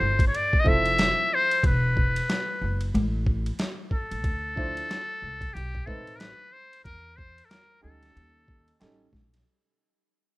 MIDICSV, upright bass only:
0, 0, Header, 1, 2, 480
1, 0, Start_track
1, 0, Tempo, 652174
1, 1206, Time_signature, 4, 2, 24, 8
1, 7638, End_track
2, 0, Start_track
2, 0, Title_t, "Upright bass"
2, 0, Program_c, 0, 32
2, 4, Note_on_c, 0, 31, 84
2, 205, Note_off_c, 0, 31, 0
2, 486, Note_on_c, 0, 29, 84
2, 807, Note_off_c, 0, 29, 0
2, 1204, Note_on_c, 0, 28, 90
2, 1606, Note_off_c, 0, 28, 0
2, 1925, Note_on_c, 0, 30, 85
2, 2126, Note_off_c, 0, 30, 0
2, 2166, Note_on_c, 0, 33, 103
2, 2567, Note_off_c, 0, 33, 0
2, 3027, Note_on_c, 0, 33, 72
2, 3124, Note_off_c, 0, 33, 0
2, 3124, Note_on_c, 0, 38, 92
2, 3526, Note_off_c, 0, 38, 0
2, 3844, Note_on_c, 0, 36, 82
2, 4045, Note_off_c, 0, 36, 0
2, 4086, Note_on_c, 0, 35, 106
2, 4287, Note_off_c, 0, 35, 0
2, 4326, Note_on_c, 0, 33, 94
2, 4646, Note_off_c, 0, 33, 0
2, 5043, Note_on_c, 0, 40, 95
2, 5445, Note_off_c, 0, 40, 0
2, 5769, Note_on_c, 0, 38, 83
2, 5968, Note_off_c, 0, 38, 0
2, 6006, Note_on_c, 0, 39, 97
2, 6407, Note_off_c, 0, 39, 0
2, 6488, Note_on_c, 0, 33, 76
2, 6688, Note_off_c, 0, 33, 0
2, 6718, Note_on_c, 0, 34, 85
2, 6922, Note_off_c, 0, 34, 0
2, 7638, End_track
0, 0, End_of_file